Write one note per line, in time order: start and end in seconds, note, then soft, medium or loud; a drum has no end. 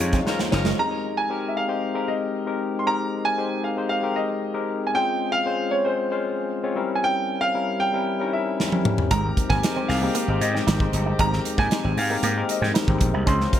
0.00 0.19 F2 loud
0.00 0.26 G#3 medium
0.00 0.26 D#4 medium
0.00 0.26 F4 medium
0.00 0.81 C#5 loud
0.00 closed hi-hat medium
0.13 0.24 C4 medium
0.13 kick medium
0.13 snare soft
0.13 closed hi-hat soft
0.26 0.37 F3 medium
0.26 0.72 G#3 medium
0.26 0.37 C#4 medium
0.26 0.72 D#4 medium
0.26 0.72 F4 medium
0.26 0.38 A#4 loud
0.26 0.72 C5 medium
0.26 snare medium
0.39 0.50 A#3 medium
0.39 snare medium
0.52 0.71 F#1 loud
0.52 0.69 F3 medium
0.52 0.69 C#4 medium
0.52 0.69 A#4 loud
0.52 muted clean electric guitar stroke soft
0.52 snare loud
0.65 0.77 G#3 medium
0.65 snare loud
0.78 1.24 G#3 medium
0.78 1.24 C4 medium
0.78 1.24 D#4 medium
0.78 1.24 G4 medium
0.78 1.25 A#4 medium
0.78 1.19 A#5 loud
1.17 1.50 G#5 loud
1.29 1.64 G#3 medium
1.29 1.64 C4 medium
1.29 1.65 D#4 medium
1.29 1.65 G4 medium
1.29 1.65 A#4 medium
1.48 1.56 E5 medium
1.57 2.10 F5 medium
1.68 1.92 G#3 medium
1.68 1.92 C4 medium
1.68 1.92 D#4 medium
1.68 1.92 G4 medium
1.68 1.92 C5 medium
1.94 2.41 G#3 medium
1.94 2.41 C4 medium
1.94 2.41 D#4 medium
1.94 2.41 G4 medium
1.94 2.41 A#4 loud
2.08 2.57 D#5 medium
2.46 2.81 G#3 medium
2.46 2.81 C4 medium
2.46 2.81 D#4 medium
2.46 2.82 G4 medium
2.46 2.82 A#4 medium
2.79 2.86 C6 medium
2.86 3.32 G#3 medium
2.86 3.32 C4 medium
2.86 3.32 D#4 medium
2.86 3.32 G4 medium
2.86 3.32 A#4 medium
2.86 3.27 A#5 loud
3.25 3.66 G#5 loud
3.38 3.73 G#3 medium
3.38 3.73 C4 medium
3.38 3.73 D#4 medium
3.38 3.73 G4 medium
3.38 3.73 C5 medium
3.64 3.88 F5 medium
3.77 4.00 G#3 medium
3.77 4.00 C4 medium
3.77 4.00 D#4 medium
3.77 4.01 G4 medium
3.77 4.01 C5 medium
3.89 4.17 F5 loud
4.03 4.49 G#3 medium
4.03 4.49 C4 medium
4.03 4.49 D#4 medium
4.03 4.49 G4 medium
4.03 4.49 A#4 medium
4.16 4.65 D#5 medium
4.54 4.89 G#3 medium
4.54 4.89 C4 medium
4.54 4.89 D#4 medium
4.54 4.89 G4 medium
4.54 4.89 A#4 medium
4.87 4.94 G#5 medium
4.93 5.40 G#3 medium
4.93 5.40 C4 medium
4.93 5.40 C#4 medium
4.93 5.40 F4 medium
4.93 5.41 C5 medium
4.93 5.31 G5 loud
5.32 5.73 F5 loud
5.45 5.80 G#3 medium
5.45 5.81 C4 medium
5.45 5.81 C#4 medium
5.45 5.81 F4 medium
5.45 5.81 C5 medium
5.71 5.85 C#5 medium
5.85 6.08 G#3 medium
5.85 6.08 C4 medium
5.85 6.08 C#4 medium
5.85 6.09 F4 medium
5.85 6.72 C5 medium
5.85 6.09 C5 medium
6.11 6.57 G#3 medium
6.11 6.57 C#4 medium
6.11 6.58 F4 medium
6.11 6.57 C5 medium
6.11 6.58 F5 medium
6.63 6.77 G#3 medium
6.63 6.75 C4 medium
6.63 6.75 C#4 medium
6.63 6.77 F4 medium
6.63 6.77 C#5 medium
6.75 7.45 G3 loud
6.75 7.45 C4 medium
6.75 7.45 C#4 medium
6.75 7.45 E4 medium
6.75 7.46 A#4 loud
6.95 7.03 G#5 medium
7.04 7.44 G5 loud
7.41 7.82 F5 loud
7.54 7.89 G3 medium
7.54 7.89 C4 medium
7.54 7.89 C#4 medium
7.54 7.89 E4 medium
7.54 7.89 A#4 medium
7.80 8.29 G5 loud
7.93 8.16 G3 medium
7.93 8.17 C4 medium
7.93 8.17 C#4 medium
7.93 8.17 E4 medium
7.93 8.17 A#4 medium
8.20 8.66 G3 medium
8.20 8.66 C4 medium
8.20 8.66 C#4 medium
8.20 8.27 D#4 medium
8.20 8.66 A#4 medium
8.27 8.69 E4 medium
8.33 8.82 E5 medium
8.60 snare medium
8.72 9.06 G3 medium
8.72 9.06 C4 medium
8.72 9.06 C#4 medium
8.72 9.07 E4 medium
8.72 9.07 A#4 medium
8.72 high tom medium
8.85 mid tom loud
8.98 floor tom medium
9.10 9.30 G#1 loud
9.10 12.97 D#3 medium
9.10 9.22 G#3 medium
9.10 9.57 G#3 medium
9.10 12.97 C4 medium
9.10 9.57 C4 medium
9.10 9.57 D#4 medium
9.10 12.97 G4 medium
9.10 9.57 G4 medium
9.10 9.57 A#4 medium
9.10 9.51 A#5 loud
9.10 kick loud
9.10 closed hi-hat medium
9.37 muted clean electric guitar stroke soft
9.37 kick medium
9.37 closed hi-hat medium
9.50 9.59 G#1 loud
9.50 9.61 A#3 medium
9.50 9.90 G#5 loud
9.50 kick loud
9.50 snare soft
9.63 9.97 G#3 medium
9.63 9.97 C4 medium
9.63 9.97 D#4 medium
9.63 9.97 G4 medium
9.63 9.98 A#4 medium
9.63 snare loud
9.63 closed hi-hat loud
9.76 9.87 C4 medium
9.88 10.08 C2 loud
9.88 10.42 F5 loud
9.88 muted clean electric guitar stroke soft
9.88 snare soft
9.88 open hi-hat medium
10.02 10.25 G#3 medium
10.02 10.13 A#3 medium
10.02 10.25 C4 medium
10.02 10.25 D#4 medium
10.02 10.26 G4 medium
10.02 10.26 A#4 medium
10.15 10.26 A#3 medium
10.15 closed hi-hat medium
10.28 10.37 G#1 loud
10.28 10.74 G#3 medium
10.28 10.74 C4 medium
10.28 10.74 D#4 medium
10.28 10.75 G4 medium
10.28 10.75 C5 medium
10.41 10.59 G#2 loud
10.41 10.89 D#5 medium
10.41 muted clean electric guitar stroke soft
10.41 closed hi-hat medium
10.54 10.65 C4 medium
10.54 snare soft
10.67 10.86 G#1 medium
10.67 10.78 D#4 medium
10.67 snare loud
10.67 closed hi-hat medium
10.80 11.14 G#3 medium
10.80 11.14 C4 medium
10.80 11.14 D#4 medium
10.80 11.15 G4 medium
10.80 11.15 C5 medium
10.80 kick loud
10.93 11.12 G1 medium
10.93 muted clean electric guitar stroke soft
10.93 closed hi-hat medium
11.06 11.17 D#4 medium
11.19 11.38 G#1 loud
11.19 11.65 G#3 medium
11.19 11.30 G#3 medium
11.19 11.65 C4 medium
11.19 11.65 D#4 medium
11.19 11.65 G4 medium
11.19 11.65 A#4 medium
11.19 11.60 A#5 loud
11.19 kick loud
11.19 closed hi-hat medium
11.33 snare soft
11.45 muted clean electric guitar stroke soft
11.45 closed hi-hat medium
11.58 11.67 G#2 medium
11.58 11.69 A#3 medium
11.58 11.99 G#5 loud
11.58 kick medium
11.58 snare soft
11.71 12.05 G#3 medium
11.71 12.05 C4 medium
11.71 12.06 D#4 medium
11.71 12.06 G4 medium
11.71 12.06 C5 medium
11.71 snare loud
11.71 closed hi-hat medium
11.84 11.94 G#1 medium
11.84 11.95 C4 medium
11.97 12.16 G#2 loud
11.97 12.46 F5 loud
11.97 muted clean electric guitar stroke soft
11.97 open hi-hat medium
12.10 12.33 G#3 medium
12.10 12.21 A#3 medium
12.10 12.33 C4 medium
12.10 12.33 D#4 medium
12.10 12.33 G4 medium
12.10 12.34 A#4 loud
12.23 12.41 G#2 loud
12.23 12.34 A#3 loud
12.23 closed hi-hat medium
12.37 12.82 G#3 medium
12.37 12.43 A#3 medium
12.37 12.82 D#4 medium
12.37 12.82 G4 medium
12.37 12.83 A#4 medium
12.43 12.85 C4 medium
12.49 12.98 D#5 medium
12.49 muted clean electric guitar stroke soft
12.49 closed hi-hat medium
12.61 12.71 G#2 medium
12.61 12.73 C4 medium
12.61 snare soft
12.74 12.86 D#4 medium
12.74 snare loud
12.74 closed hi-hat medium
12.88 12.97 G#1 loud
12.88 13.22 G#3 medium
12.88 13.23 C4 medium
12.88 13.23 D#4 medium
12.88 13.23 G4 medium
12.88 13.23 C5 medium
12.88 kick loud
13.00 13.10 A#1 loud
13.00 muted clean electric guitar stroke soft
13.00 kick loud
13.00 closed hi-hat medium
13.14 13.23 C2 medium
13.14 13.25 D#4 medium
13.25 13.46 C#2 loud
13.25 13.60 F3 medium
13.25 13.60 G#3 medium
13.25 13.60 C4 medium
13.25 13.60 C#4 medium
13.25 13.38 C#4 medium
13.25 13.60 C#4 medium
13.25 13.60 F4 medium
13.25 13.60 A#4 loud
13.25 13.60 C5 medium
13.25 13.57 C6 loud
13.25 kick loud
13.25 closed hi-hat medium
13.41 snare soft
13.53 muted clean electric guitar stroke soft
13.53 kick medium
13.53 closed hi-hat medium